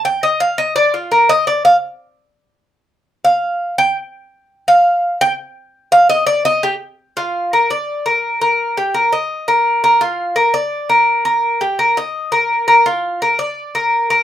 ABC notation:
X:1
M:4/4
L:1/8
Q:1/4=169
K:Bb
V:1 name="Cuban tres"
g e f e d F B e | d f z6 | z2 f3 g z2 | z2 f3 g z2 |
z f e d e G z2 | F2 B d2 B2 B- | B G B e2 B2 B | F2 B d2 B2 B- |
B G B e2 B2 B | F2 B d2 B2 B |]